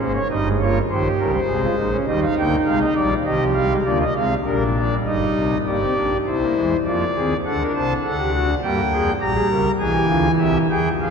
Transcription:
0.00 0.18 G#1 medium
0.00 0.18 G#2 medium
0.00 0.18 A#3 medium
0.00 0.21 C#4 medium
0.00 0.12 C5 medium
0.15 0.28 C#5 medium
0.29 0.81 G1 medium
0.29 0.81 G2 medium
0.29 0.43 G3 medium
0.29 0.48 D#4 medium
0.29 0.48 D#5 medium
0.45 0.57 G#3 medium
0.61 0.79 A#3 medium
0.61 0.79 F4 medium
0.61 0.78 C#5 medium
0.90 1.08 A#1 medium
0.90 1.08 A#2 medium
0.90 1.08 D#3 medium
0.90 1.40 G4 medium
0.90 1.08 C5 medium
1.19 1.37 C#2 medium
1.19 1.37 C#3 medium
1.19 1.37 G3 medium
1.19 1.31 A#4 medium
1.34 1.97 C5 medium
1.47 1.66 C2 medium
1.47 1.66 C3 medium
1.47 1.99 G#3 medium
1.47 1.60 G#4 medium
1.62 1.75 F4 medium
1.77 1.95 A#1 medium
1.77 1.96 A#2 medium
1.77 1.90 D#4 medium
1.92 2.05 C#4 medium
2.07 2.25 D#2 medium
2.07 2.25 D#3 medium
2.07 2.25 G3 medium
2.07 3.09 D#4 medium
2.07 2.20 D#5 medium
2.21 2.34 F5 medium
2.37 2.56 D2 medium
2.37 2.56 D3 medium
2.37 2.56 A#3 medium
2.37 2.56 G5 medium
2.66 2.84 C2 medium
2.66 2.84 C3 medium
2.66 2.85 G#3 medium
2.66 2.79 F5 medium
2.81 2.94 D#5 medium
2.95 3.14 A#1 medium
2.95 3.14 A#2 medium
2.95 3.14 G3 medium
2.95 3.14 D5 medium
3.25 3.76 C2 medium
3.25 3.76 C3 medium
3.25 3.38 D#3 medium
3.25 3.76 G4 medium
3.25 3.44 D#5 loud
3.40 3.53 F3 medium
3.54 3.68 G3 medium
3.54 3.73 F5 medium
3.70 3.83 G#3 medium
3.85 4.04 D2 medium
3.85 4.04 D3 medium
3.85 4.04 A#3 medium
3.85 4.04 F4 medium
3.85 3.98 D5 medium
4.01 4.13 D#5 medium
4.15 4.34 C2 medium
4.15 4.34 C3 medium
4.15 4.34 G#3 medium
4.15 4.34 C4 medium
4.15 4.34 F5 medium
4.44 4.96 A#1 medium
4.44 4.96 A#2 medium
4.44 4.63 G3 medium
4.44 4.96 D4 medium
4.44 4.63 A#4 medium
4.76 4.89 F3 medium
4.76 4.95 D5 medium
4.91 5.55 G3 medium
5.06 5.24 G1 medium
5.06 5.25 G2 medium
5.06 5.57 D#4 medium
5.06 5.57 D#5 medium
5.35 5.54 C2 medium
5.35 5.54 C3 medium
5.66 5.84 G1 medium
5.66 5.84 G2 medium
5.66 5.79 A#3 medium
5.66 6.17 G4 medium
5.66 6.17 D5 medium
5.82 5.94 C4 medium
5.96 6.15 A#1 medium
5.96 6.14 A#2 medium
5.96 6.15 D4 medium
6.26 6.44 C2 medium
6.26 6.44 C3 medium
6.26 6.39 C4 medium
6.26 6.77 E4 medium
6.26 6.77 C5 medium
6.41 6.54 A#3 medium
6.56 6.74 E2 medium
6.56 6.74 E3 medium
6.56 6.74 G#3 medium
6.86 7.04 F2 medium
6.86 7.04 F3 medium
6.86 7.04 A#3 medium
6.86 7.04 F4 medium
6.86 7.37 D5 medium
7.15 7.33 D#2 medium
7.15 7.33 D#3 medium
7.15 7.33 C4 medium
7.15 7.33 G#4 medium
7.45 7.63 D2 medium
7.45 7.63 D3 medium
7.45 8.46 D4 medium
7.45 7.57 A4 medium
7.45 7.63 F#5 medium
7.60 7.72 A#4 medium
7.75 7.93 C2 medium
7.75 7.93 C3 medium
7.75 7.93 C5 medium
7.75 7.93 A5 medium
8.04 8.54 D2 medium
8.04 8.54 D3 medium
8.04 8.16 A4 medium
8.04 8.54 F#5 medium
8.18 8.31 G4 medium
8.33 8.51 F#4 medium
8.62 8.80 G2 medium
8.62 8.80 G3 medium
8.62 9.12 A#3 medium
8.62 8.80 G4 medium
8.62 9.13 G5 medium
8.92 9.10 F2 medium
8.92 9.10 F3 medium
8.92 9.10 G#4 medium
9.20 9.39 A#1 medium
9.20 9.38 A#2 medium
9.20 9.71 G3 medium
9.20 9.33 G4 medium
9.20 9.71 A#5 medium
9.34 9.47 G#4 medium
9.50 9.68 C#2 medium
9.50 9.68 C#3 medium
9.50 9.68 A#4 medium
9.79 9.98 B1 medium
9.79 9.98 B2 medium
9.79 10.67 E3 medium
9.79 9.92 G#4 medium
9.79 10.31 G#5 medium
9.92 10.06 G4 medium
10.08 10.28 D2 medium
10.08 10.28 D3 medium
10.08 10.28 F4 medium
10.38 10.58 C2 medium
10.38 10.58 C3 medium
10.38 10.58 G4 medium
10.38 10.58 E5 medium
10.69 10.89 E2 medium
10.69 10.89 E3 medium
10.69 10.89 G#4 medium
10.69 10.89 G5 medium
11.00 11.10 F2 medium
11.00 11.10 F3 medium
11.00 11.10 G#4 medium
11.00 11.10 F5 medium

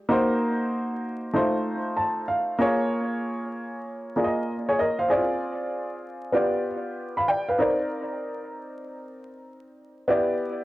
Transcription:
0.09 1.31 A#3 medium
0.09 1.32 D#4 medium
0.09 1.32 F#4 medium
0.09 1.33 C5 medium
1.33 2.56 A3 medium
1.33 2.57 D#4 medium
1.33 2.57 F4 medium
1.33 2.58 C5 medium
1.97 2.26 A5 medium
2.28 2.57 F5 medium
2.59 4.12 A#3 medium
2.59 4.13 F4 medium
2.59 4.13 G#4 medium
2.59 4.14 C#5 medium
4.16 5.10 A#3 medium
4.16 5.10 F4 medium
4.16 4.47 G#4 medium
4.16 4.25 D5 medium
4.24 4.51 D#5 medium
4.69 4.79 G#4 medium
4.69 4.78 C#5 medium
4.79 4.98 A#4 medium
4.79 4.98 D#5 medium
4.99 5.29 C5 medium
4.99 5.28 F5 medium
5.08 6.31 C4 medium
5.08 5.18 E4 medium
5.08 6.32 G#4 medium
5.08 6.33 D5 medium
5.16 6.32 F4 medium
6.32 7.56 B3 medium
6.32 7.56 F4 medium
6.32 7.57 G4 medium
6.32 6.65 D5 medium
7.17 7.28 F5 medium
7.17 7.27 B5 medium
7.28 7.48 D5 medium
7.28 7.48 G5 medium
7.49 7.79 B4 medium
7.49 7.78 F5 medium
7.58 10.05 C4 medium
7.58 10.05 D#4 medium
7.58 10.06 A#4 medium
7.58 10.06 D5 medium
10.08 10.64 B3 medium
10.08 10.64 E4 medium
10.08 10.64 G4 medium
10.08 10.64 D5 medium

